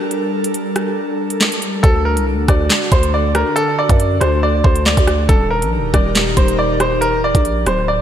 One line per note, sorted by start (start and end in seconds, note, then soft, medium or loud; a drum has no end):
0.00 1.80 G3 medium
0.00 1.80 D4 medium
0.00 5.25 A4 medium
0.00 1.80 A#4 medium
0.11 closed hi-hat medium
0.44 closed hi-hat medium
0.54 closed hi-hat medium
0.76 cross-stick medium
0.76 closed hi-hat medium
1.30 closed hi-hat medium
1.41 snare loud
1.41 clap medium
1.52 closed hi-hat medium
1.62 closed hi-hat medium
1.83 2.18 D2 loud
1.83 5.26 D3 medium
1.83 5.26 D4 medium
1.83 5.26 F#4 medium
1.83 2.01 A4 medium
1.83 kick loud
1.83 closed hi-hat medium
2.05 2.23 A#4 medium
2.17 2.34 C2 loud
2.17 closed hi-hat medium
2.33 2.48 D2 loud
2.48 2.69 D2 loud
2.48 2.89 D5 medium
2.48 kick medium
2.48 cross-stick medium
2.48 closed hi-hat medium
2.70 snare loud
2.70 clap loud
2.70 closed hi-hat medium
2.92 3.44 D2 loud
2.92 3.10 C5 medium
2.92 kick medium
2.92 closed hi-hat medium
3.03 closed hi-hat medium
3.14 3.31 D5 medium
3.35 3.53 A#4 medium
3.35 cross-stick loud
3.35 closed hi-hat medium
3.56 3.74 A4 loud
3.56 closed hi-hat medium
3.79 4.19 D5 loud
3.89 4.20 F#2 loud
3.89 kick loud
3.89 closed hi-hat medium
4.00 closed hi-hat medium
4.21 4.63 D2 loud
4.21 4.39 C5 medium
4.21 cross-stick medium
4.21 closed hi-hat medium
4.43 4.61 D5 medium
4.64 4.96 D2 loud
4.64 4.82 C5 medium
4.64 kick medium
4.76 closed hi-hat medium
4.86 5.27 D5 medium
4.86 snare loud
4.86 clap medium
4.97 5.28 D2 loud
4.97 kick medium
4.97 closed hi-hat medium
5.07 cross-stick loud
5.07 closed hi-hat soft
5.29 5.64 D#1 loud
5.29 8.02 D#3 medium
5.29 8.02 D#4 medium
5.29 8.02 G4 medium
5.29 5.47 A4 medium
5.29 8.02 A#4 medium
5.29 kick loud
5.29 closed hi-hat medium
5.50 5.68 A#4 medium
5.62 5.79 A#1 loud
5.62 closed hi-hat medium
5.78 5.93 D#1 medium
5.94 6.35 D#1 loud
5.94 6.35 D5 medium
5.94 kick medium
5.94 cross-stick medium
5.94 closed hi-hat medium
6.15 snare loud
6.15 clap medium
6.15 closed hi-hat medium
6.37 7.15 D#1 loud
6.37 6.55 C5 medium
6.37 kick medium
6.37 closed hi-hat medium
6.48 closed hi-hat medium
6.59 6.76 D5 medium
6.80 6.98 C5 medium
6.80 cross-stick loud
6.80 closed hi-hat medium
7.01 7.19 A#4 loud
7.01 closed hi-hat medium
7.13 7.34 D1 loud
7.24 7.64 D5 medium
7.35 7.65 A#1 loud
7.35 kick loud
7.35 closed hi-hat medium
7.45 closed hi-hat medium
7.66 8.02 D1 loud
7.66 7.85 C5 medium
7.66 cross-stick medium
7.66 closed hi-hat medium
7.88 8.02 D5 medium